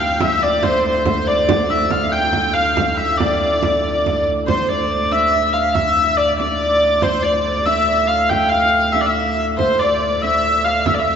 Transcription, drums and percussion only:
0.20 frame drum medium
0.42 frame drum soft
0.63 frame drum medium
1.05 frame drum medium
1.49 frame drum loud
1.70 frame drum soft
1.90 frame drum medium
2.33 frame drum medium
2.77 frame drum medium
2.99 frame drum soft
3.20 frame drum medium
3.63 frame drum medium
4.06 frame drum medium
4.48 frame drum medium
4.69 frame drum soft
5.12 frame drum medium
5.33 frame drum soft
5.75 frame drum medium
5.96 frame drum soft
6.40 frame drum medium
6.61 frame drum soft
7.02 frame drum medium
7.24 frame drum soft
7.66 frame drum medium
7.89 frame drum soft
8.31 frame drum medium
8.95 frame drum medium
9.59 frame drum medium
9.80 frame drum soft
10.23 frame drum medium
10.44 frame drum soft
10.86 frame drum medium
11.06 frame drum soft

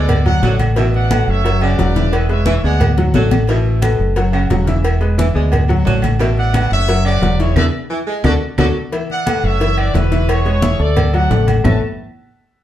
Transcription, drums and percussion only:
0.09 cowbell loud
0.09 high conga soft
0.09 low conga medium
0.09 low agogo loud
0.09 claves medium
0.26 high conga soft
0.26 low conga medium
0.26 low agogo medium
0.43 cowbell medium
0.43 high conga medium
0.43 low timbale medium
0.59 cowbell medium
0.59 high conga medium
0.59 low agogo loud
0.59 claves medium
0.76 cowbell loud
0.76 high conga soft
0.76 low agogo medium
0.94 high conga soft
1.11 cowbell medium
1.11 high conga loud
1.11 low timbale medium
1.11 low agogo loud
1.11 claves medium
1.28 high conga soft
1.45 cowbell loud
1.45 high conga soft
1.45 low agogo medium
1.61 high conga soft
1.61 low agogo loud
1.61 claves medium
1.79 cowbell medium
1.79 high conga medium
1.79 low timbale medium
1.96 cowbell medium
1.96 high conga medium
2.13 cowbell loud
2.13 high conga soft
2.13 low agogo loud
2.13 claves medium
2.29 high conga soft
2.29 low agogo medium
2.46 cowbell medium
2.46 high conga loud
2.46 low timbale medium
2.64 high conga soft
2.80 cowbell loud
2.80 high conga soft
2.80 low conga medium
2.80 low agogo loud
2.80 claves medium
2.97 high bongo medium
2.97 high conga soft
2.97 low conga medium
2.97 low agogo medium
3.14 cowbell medium
3.14 low bongo medium
3.14 high conga medium
3.14 low timbale medium
3.31 cowbell medium
3.31 low bongo loud
3.31 high conga medium
3.31 low agogo loud
3.31 claves medium
3.48 cowbell loud
3.48 high conga soft
3.48 low agogo medium
3.65 high conga soft
3.82 cowbell medium
3.82 high conga loud
3.82 low timbale medium
3.82 low agogo loud
3.82 claves medium
4.00 high conga soft
4.16 cowbell loud
4.16 high conga soft
4.16 low agogo medium
4.33 high conga soft
4.33 low agogo loud
4.33 claves medium
4.50 cowbell medium
4.50 high conga medium
4.50 low timbale medium
4.67 cowbell medium
4.67 high conga medium
4.84 cowbell loud
4.84 high conga soft
4.84 low agogo loud
4.84 claves medium
5.01 high conga soft
5.01 low agogo medium
5.18 cowbell medium
5.18 high conga loud
5.18 low timbale medium
5.36 high conga soft
5.52 cowbell loud
5.52 high conga soft
5.52 low conga medium
5.52 low agogo loud
5.52 claves medium
5.68 high conga soft
5.68 low conga medium
5.68 low agogo medium
5.85 cowbell medium
5.85 high conga medium
5.85 low timbale medium
6.02 cowbell medium
6.02 high conga medium
6.02 low agogo loud
6.02 claves medium
6.20 cowbell loud
6.20 high conga soft
6.20 low agogo medium
6.38 high conga soft
6.54 cowbell medium
6.54 high conga loud
6.54 low timbale medium
6.54 low agogo loud
6.54 claves medium
6.72 high conga soft
6.88 cowbell loud
6.88 high conga soft
6.88 low agogo medium
7.05 high conga soft
7.05 low agogo loud
7.05 claves medium
7.21 cowbell medium
7.21 high conga medium
7.21 low timbale medium
7.40 cowbell medium
7.56 cowbell loud
7.56 high conga loud
7.56 high timbale loud
7.56 claves loud
8.24 cowbell loud
8.24 high conga loud
8.24 high timbale loud
8.24 claves loud
8.58 cowbell loud
8.58 high conga loud
8.58 high timbale loud
8.58 claves loud
8.93 cowbell loud
8.93 high conga soft
8.93 low agogo medium
9.10 high conga soft
9.26 cowbell medium
9.26 high conga medium
9.26 low timbale medium
9.26 low agogo loud
9.26 claves medium
9.44 high conga soft
9.60 cowbell loud
9.60 high conga soft
9.60 low agogo medium
9.77 high conga soft
9.77 low agogo loud
9.77 claves medium
9.94 cowbell medium
9.94 high conga medium
9.94 low timbale medium
10.12 cowbell medium
10.12 high conga medium
10.29 cowbell loud
10.29 high conga soft
10.29 low agogo loud
10.29 claves medium
10.46 high conga soft
10.46 low agogo medium
10.62 cowbell medium
10.62 high conga loud
10.62 low timbale medium
10.79 high conga soft
10.96 cowbell loud
10.96 high conga soft
10.96 low conga medium
10.96 low agogo loud
10.96 claves medium
11.14 high conga soft
11.14 low agogo medium
11.31 cowbell medium
11.31 high conga medium
11.31 low timbale medium
11.47 cowbell medium
11.47 high conga medium
11.47 low agogo loud
11.47 claves medium
11.64 low bongo loud
11.64 low conga loud
11.64 low timbale loud
11.64 claves loud

